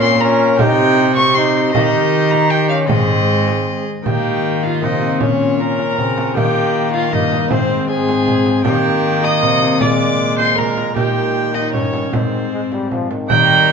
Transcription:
Already playing: harp A#2 A#3 F4 C#5, cello A#2, trombone C#4, viola A#4
0.01 violin C6, frame drum
0.17 harp A#3 F4 C#5, viola A#4, violin A#5
0.21 trombone C#4
0.57 cello C3, harp C3 D#4 C5, trombone D#4, viola G4, violin G5, frame drum
1.16 violin C#6, frame drum
1.34 harp D#4 C5, trombone D#4, viola G4, violin C6
1.72 harp D#3 D#4 A#4, cello D#3, trombone D#4, viola G4, violin D#5, frame drum
2.30 violin A#5, frame drum
2.50 trombone D#4, viola G4, violin G5
2.69 trombone C#4, violin F5
2.86 cello G#2, harp G#2 G#3 D#4 C5, trombone C4, viola G#4, violin D#5, frame drum
3.48 frame drum
4.02 harp D#3 A#3 D#4 G4, cello D#3, trombone A#3, violin G5, frame drum
4.07 viola G4
4.63 viola F4, violin F5, frame drum
4.79 harp C3 A#3 D#4 G4, trombone A#3, frame drum
4.83 cello C3, viola D#4, violin D#5
5.02 frame drum
5.18 harp A#2 A#3 C#4 F4, trombone C#4, violin C#5, frame drum
5.22 cello A#2, viola C#4
5.56 harp A#3 C#4 F4, trombone C#4, violin A#5
5.61 viola A#4
5.79 frame drum
5.98 harp C#3, cello C#3, trombone C4, frame drum
6.18 frame drum
6.33 cello D#3, harp D#3 A#3 D#4, trombone A#3, viola G4, violin G5, frame drum
6.93 viola F4, violin F5, frame drum
7.09 harp G2 A#3 D#4, cello G2, trombone A#3, violin D#5, frame drum
7.14 viola D#4
7.32 frame drum
7.47 harp G#2 G#3 C4 D#4, violin C5, frame drum
7.51 cello G#2, viola C4, trombone C4
7.85 harp G#3 C4 D#4
7.90 trombone C4, viola G#4, violin G#5
8.09 frame drum
8.27 frame drum
8.46 frame drum
8.62 harp D#3 A#3 D#4, trombone A#3, violin G5, frame drum
8.66 cello D#3, viola G4
9.23 viola D#5, violin D#6, frame drum
9.43 harp C3, cello C3, frame drum
9.62 frame drum
9.77 cello A#2, harp A#2 G#3 A#3 F4, trombone G#3, viola D5, violin D6, frame drum
10.38 viola C5, violin C6, frame drum
10.55 harp G#3 A#3 F4, viola A#4, violin A#5, frame drum
10.59 trombone G#3
10.78 frame drum
10.94 cello A#2, harp A#2 A#3 D#4, trombone D#3, viola G4, violin G5, frame drum
11.54 viola D#4, violin D#5, frame drum
11.73 harp G2, cello G2, viola C#4, violin C#5, frame drum
11.93 frame drum
12.09 harp G#2 G#3 C4 D#4, trombone D#3, viola C4, violin C5
12.13 cello G#2, frame drum
12.52 trombone G#3
12.72 trombone G3, frame drum
12.91 trombone F3, frame drum
13.11 trombone D#3, frame drum
13.26 harp D#3 A#3 D#4, viola G5, frame drum
13.30 cello D#3, trombone G3, violin A#4

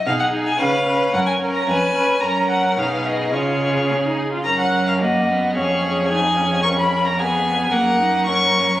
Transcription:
0.06 cello B2, viola D#4, violin G#4 F5
0.19 violin F#5
0.32 viola D#4, violin G#4
0.46 violin G#5
0.58 cello C#3, viola C#4, violin B4 F5
0.85 viola C#4, violin B4
1.12 cello F#2, viola C#4, violin A#4 F#5
1.26 violin G#5
1.40 viola C#4, violin A#4
1.54 violin A#5
1.67 cello F2, viola C#4, violin B4 G#5
1.94 viola C#4, violin B4
2.20 cello F#2, viola C#4, violin A#4 A#5
2.49 violin F#5
2.77 cello B2, viola D#4, violin G#4 F5
3.06 violin D#5
3.32 cello C#3, viola F4, violin G#4 C#5
3.90 viola C#4
4.03 viola D#4
4.32 viola F4
4.44 cello F#2, viola C#4, violin A#4 A#5
4.59 violin F#5
4.87 violin F5
5.00 viola A#3, violin F#4 D#5
5.29 viola B3
5.55 cello F2, viola C#4, violin G#4 C#5
6.09 viola D#4, violin G#4 G#5
6.37 viola C#4
6.63 viola C#4, violin A#4 C#6
6.78 violin B5
7.05 violin A#5
7.18 viola B3, violin G#4 G#5
7.72 cello F#2, viola A#3, violin A#4 F#5
7.99 viola D#4
8.26 viola C#4, violin A#4 C#6

